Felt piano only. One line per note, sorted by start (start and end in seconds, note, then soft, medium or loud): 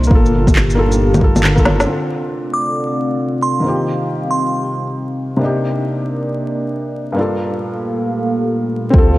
0.00 0.13 D4 medium
0.00 0.13 D#4 medium
0.00 0.13 A#4 loud
0.07 0.73 A#3 medium
0.07 0.75 F4 medium
0.15 0.77 A4 loud
0.75 1.18 A#3 medium
0.75 1.20 F4 medium
0.75 1.21 A4 medium
1.20 1.53 A#3 medium
1.20 1.54 F4 medium
1.24 1.56 A4 medium
1.56 1.85 A#3 loud
1.56 1.86 F4 medium
1.56 1.87 A4 loud
1.83 3.60 D3 medium
1.83 3.62 C4 medium
1.89 3.63 F4 medium
1.89 3.64 A4 medium
3.60 5.37 D#3 medium
3.60 5.38 A#3 medium
3.64 5.39 C4 medium
3.64 5.40 F4 medium
3.68 5.41 G4 medium
5.37 7.13 C3 medium
5.37 7.13 A#3 medium
5.41 7.15 D4 medium
5.41 7.16 D#4 medium
5.41 7.17 G4 medium
7.12 8.89 G2 medium
7.12 8.90 A#3 medium
7.16 8.91 D4 medium
7.16 8.92 F4 medium
7.21 8.93 A4 medium
8.90 9.18 C4 medium
8.90 9.18 F4 medium
8.98 9.18 A4 medium